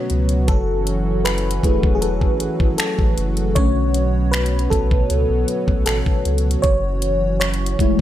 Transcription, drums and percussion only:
0.10 closed hi-hat
0.29 closed hi-hat
0.48 kick, closed hi-hat
0.87 closed hi-hat
1.25 finger snap, closed hi-hat
1.38 closed hi-hat
1.51 closed hi-hat
1.63 kick, closed hi-hat
1.83 kick
2.02 closed hi-hat
2.21 kick
2.40 closed hi-hat
2.60 kick
2.78 finger snap, closed hi-hat
2.99 kick
3.18 closed hi-hat
3.37 closed hi-hat
3.56 kick, closed hi-hat
3.94 closed hi-hat
4.33 finger snap, closed hi-hat
4.46 closed hi-hat
4.59 closed hi-hat
4.71 kick, closed hi-hat
4.91 kick
5.10 closed hi-hat
5.48 closed hi-hat
5.68 kick
5.86 finger snap, closed hi-hat
6.06 kick
6.25 closed hi-hat
6.38 closed hi-hat
6.51 closed hi-hat
6.64 kick, closed hi-hat
7.02 closed hi-hat
7.41 finger snap, closed hi-hat
7.54 closed hi-hat
7.66 closed hi-hat
7.79 kick, closed hi-hat

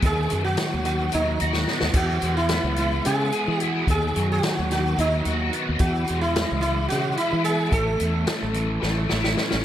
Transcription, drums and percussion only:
0.02 kick, closed hi-hat
0.30 closed hi-hat
0.57 snare, closed hi-hat
0.85 closed hi-hat
1.12 closed hi-hat
1.40 closed hi-hat
1.53 snare
1.68 snare
1.80 snare
1.94 kick, closed hi-hat, crash
2.22 closed hi-hat
2.49 snare, closed hi-hat
2.76 closed hi-hat
3.05 closed hi-hat
3.32 closed hi-hat
3.60 closed hi-hat
3.87 kick, closed hi-hat
4.16 closed hi-hat
4.43 snare, closed hi-hat
4.71 snare, closed hi-hat
4.99 closed hi-hat
5.25 closed hi-hat
5.53 closed hi-hat
5.79 kick, closed hi-hat
6.08 closed hi-hat
6.36 snare, closed hi-hat
6.62 closed hi-hat
6.90 snare, closed hi-hat
7.17 closed hi-hat
7.45 closed hi-hat
7.72 kick, closed hi-hat
8.00 closed hi-hat
8.27 snare, closed hi-hat
8.54 closed hi-hat
8.82 snare
9.10 snare
9.24 snare
9.37 snare
9.51 snare

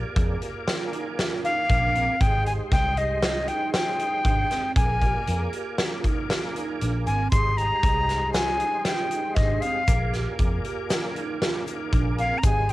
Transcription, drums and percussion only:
0.16 kick, closed hi-hat
0.42 closed hi-hat
0.67 snare, closed hi-hat
0.93 closed hi-hat
1.19 snare, closed hi-hat
1.45 closed hi-hat
1.69 kick, closed hi-hat
1.95 closed hi-hat
2.21 kick, closed hi-hat
2.46 closed hi-hat
2.72 kick, snare, closed hi-hat
2.97 closed hi-hat
3.23 snare, closed hi-hat
3.48 closed hi-hat
3.74 snare, closed hi-hat
4.00 closed hi-hat
4.25 kick, closed hi-hat
4.51 snare, closed hi-hat
4.76 kick, closed hi-hat
5.02 kick, closed hi-hat
5.27 closed hi-hat
5.53 closed hi-hat
5.78 snare, closed hi-hat
6.04 kick, closed hi-hat
6.30 snare, closed hi-hat
6.56 closed hi-hat
6.81 closed hi-hat
7.07 closed hi-hat
7.32 kick, closed hi-hat, shaker
7.58 closed hi-hat, shaker
7.83 kick, closed hi-hat
8.09 snare, closed hi-hat
8.34 snare, closed hi-hat, shaker
8.60 closed hi-hat
8.85 snare, closed hi-hat
9.11 closed hi-hat, shaker
9.36 kick, snare, closed hi-hat
9.62 closed hi-hat
9.87 kick, closed hi-hat, shaker
10.13 snare, closed hi-hat, shaker
10.39 kick, closed hi-hat
10.64 closed hi-hat
10.90 snare, closed hi-hat, shaker
11.16 closed hi-hat
11.42 snare, closed hi-hat
11.67 closed hi-hat, shaker
11.93 kick, closed hi-hat
12.18 closed hi-hat
12.43 kick, closed hi-hat, shaker
12.69 closed hi-hat, shaker

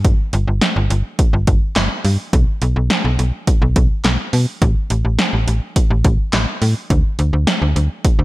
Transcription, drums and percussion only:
0.05 kick, closed hi-hat
0.33 closed hi-hat
0.61 snare, closed hi-hat
0.90 closed hi-hat
1.19 kick, closed hi-hat
1.47 kick, closed hi-hat
1.76 snare, clap, closed hi-hat
2.05 open hi-hat
2.33 kick, closed hi-hat
2.62 closed hi-hat
2.90 snare, closed hi-hat
3.19 closed hi-hat
3.47 kick, closed hi-hat
3.76 kick, closed hi-hat
4.04 snare, clap, closed hi-hat
4.33 open hi-hat
4.62 kick, closed hi-hat
4.90 closed hi-hat
5.19 snare, closed hi-hat
5.48 closed hi-hat
5.76 kick, closed hi-hat
6.04 kick, closed hi-hat
6.33 snare, clap, closed hi-hat
6.62 open hi-hat
6.90 kick, closed hi-hat
7.19 closed hi-hat
7.47 snare, closed hi-hat
7.76 closed hi-hat
8.05 kick, closed hi-hat

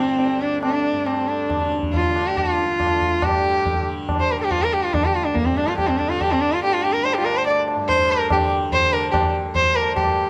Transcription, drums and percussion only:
0.19 tabla tin
0.63 tabla na
1.06 tabla na
1.50 tabla na, tabla ge
1.72 tabla te
1.83 tabla ge
1.94 tabla tin, tabla ge
2.16 tabla na
2.37 tabla na, tabla ge
2.59 tabla te
2.80 tabla na, tabla ge
3.02 tabla ge
3.22 tabla na, tabla ge
3.66 tabla tin, tabla ge
4.09 tabla na, tabla ge
4.51 tabla na, tabla ge
4.94 tabla na, tabla ge
5.36 tabla tin, tabla ge
5.57 tabla na
5.68 tabla ke
5.78 tabla na, tabla ge
6.00 tabla ge
6.21 tabla na, tabla ge
6.63 tabla na
7.05 tabla tin
7.26 tabla na
7.48 tabla na
7.68 tabla na
7.89 tabla tin, tabla ge
8.10 tabla na
8.30 tabla na, tabla ge
8.72 tabla tin, tabla ge
8.93 tabla na
9.14 tabla na, tabla ge
9.55 tabla tin, tabla ge
9.76 tabla na
9.97 tabla na, tabla ge

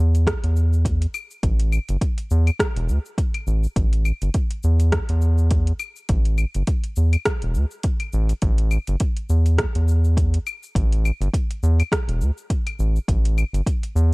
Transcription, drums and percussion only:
0.15 closed hi-hat, cabasa
0.27 kick, cross-stick, closed hi-hat, cabasa
0.44 closed hi-hat
0.56 cabasa
0.73 cabasa
0.85 kick, closed hi-hat, cabasa
1.02 closed hi-hat
1.14 cabasa, claves
1.31 cabasa
1.43 kick, closed hi-hat, cabasa
1.60 closed hi-hat
1.72 cabasa, claves
1.89 closed hi-hat, cabasa
2.01 kick, closed hi-hat, cabasa
2.18 closed hi-hat
2.31 cabasa
2.47 closed hi-hat, cabasa, claves
2.60 kick, cross-stick, closed hi-hat, cabasa
2.76 closed hi-hat
2.89 cabasa
3.05 cabasa
3.18 kick, closed hi-hat, cabasa
3.34 closed hi-hat, claves
3.47 cabasa
3.63 cabasa
3.76 kick, closed hi-hat, cabasa
3.93 closed hi-hat
4.05 cabasa, claves
4.22 closed hi-hat, cabasa
4.34 kick, closed hi-hat, cabasa
4.51 closed hi-hat
4.63 cabasa
4.80 closed hi-hat, cabasa
4.92 kick, cross-stick, closed hi-hat, cabasa
5.09 closed hi-hat
5.21 cabasa
5.38 cabasa
5.51 kick, closed hi-hat, cabasa
5.67 closed hi-hat
5.79 cabasa, claves
5.96 cabasa
6.09 kick, closed hi-hat, cabasa
6.25 closed hi-hat
6.38 cabasa, claves
6.54 closed hi-hat, cabasa
6.67 kick, closed hi-hat, cabasa
6.84 closed hi-hat
6.96 cabasa
7.13 closed hi-hat, cabasa, claves
7.25 kick, cross-stick, closed hi-hat, cabasa
7.42 closed hi-hat
7.54 cabasa
7.71 cabasa
7.83 kick, closed hi-hat, cabasa
8.00 closed hi-hat, claves
8.13 cabasa
8.29 closed hi-hat, cabasa
8.42 kick, closed hi-hat, cabasa
8.58 closed hi-hat
8.71 cabasa, claves
8.87 closed hi-hat, cabasa
9.00 kick, closed hi-hat, cabasa
9.17 closed hi-hat
9.29 cabasa
9.46 closed hi-hat, cabasa
9.59 kick, cross-stick, closed hi-hat, cabasa
9.75 closed hi-hat
9.88 cabasa
10.04 cabasa
10.17 kick, closed hi-hat, cabasa
10.34 closed hi-hat
10.47 cabasa, claves
10.63 cabasa
10.75 kick, closed hi-hat, cabasa
10.92 closed hi-hat
11.05 cabasa, claves
11.22 closed hi-hat, cabasa
11.34 kick, closed hi-hat, cabasa
11.51 closed hi-hat
11.63 cabasa
11.80 closed hi-hat, cabasa, claves
11.92 kick, cross-stick, closed hi-hat, cabasa
12.09 closed hi-hat
12.21 cabasa
12.38 cabasa
12.50 kick, closed hi-hat, cabasa
12.67 closed hi-hat, claves
12.79 cabasa
12.96 cabasa
13.08 kick, closed hi-hat, cabasa
13.25 closed hi-hat
13.38 cabasa, claves
13.54 closed hi-hat, cabasa
13.67 kick, closed hi-hat, cabasa
13.83 closed hi-hat
13.96 cabasa

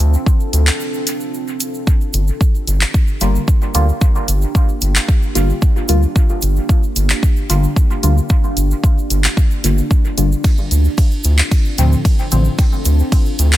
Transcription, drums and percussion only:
0.00 closed hi-hat
0.14 shaker
0.26 kick, shaker
0.40 shaker
0.53 closed hi-hat, shaker
0.67 clap, shaker
0.80 shaker
0.94 shaker
1.07 closed hi-hat, shaker
1.20 shaker
1.34 shaker
1.48 shaker
1.60 closed hi-hat, shaker
1.74 shaker
1.87 kick, shaker
2.01 shaker
2.13 closed hi-hat, shaker
2.27 shaker
2.41 kick, shaker
2.55 shaker
2.67 closed hi-hat, shaker
2.81 clap, shaker
2.94 kick, shaker
3.07 shaker
3.21 closed hi-hat, shaker
3.35 shaker
3.48 kick, shaker
3.62 shaker
3.74 closed hi-hat, shaker
3.89 shaker
4.01 kick, shaker
4.15 shaker
4.28 closed hi-hat, shaker
4.42 shaker
4.55 kick, shaker
4.69 shaker
4.81 closed hi-hat, shaker
4.96 clap, shaker
5.09 kick, shaker
5.22 shaker
5.35 closed hi-hat, shaker
5.50 shaker
5.62 kick, shaker
5.76 shaker
5.88 closed hi-hat, shaker
6.03 shaker
6.16 kick, shaker
6.29 shaker
6.42 closed hi-hat, shaker
6.56 shaker
6.69 kick, shaker
6.83 shaker
6.96 closed hi-hat, shaker
7.10 clap, shaker
7.23 kick, shaker
7.36 shaker
7.50 closed hi-hat, shaker
7.63 shaker
7.76 kick, shaker
7.91 shaker
8.03 closed hi-hat, shaker
8.18 shaker
8.29 kick, shaker
8.44 shaker
8.57 closed hi-hat, shaker
8.71 shaker
8.84 kick, shaker
8.98 shaker
9.10 closed hi-hat, shaker
9.24 clap, shaker
9.37 kick, shaker
9.51 shaker
9.64 closed hi-hat, shaker
9.78 shaker
9.91 kick, shaker
10.05 shaker
10.18 closed hi-hat, shaker
10.32 shaker
10.44 kick, ride, shaker
10.57 shaker
10.71 closed hi-hat, shaker
10.84 shaker
10.98 kick, ride, shaker
11.11 shaker
11.24 closed hi-hat, shaker
11.38 clap, shaker
11.51 kick, ride, shaker
11.65 shaker
11.78 closed hi-hat, shaker
11.92 shaker
12.05 kick, ride, shaker
12.19 shaker
12.31 closed hi-hat, shaker
12.44 shaker
12.58 kick, ride, shaker
12.72 shaker
12.85 closed hi-hat, shaker
12.99 shaker
13.12 kick, ride, shaker
13.26 shaker
13.39 closed hi-hat, shaker
13.52 clap, shaker

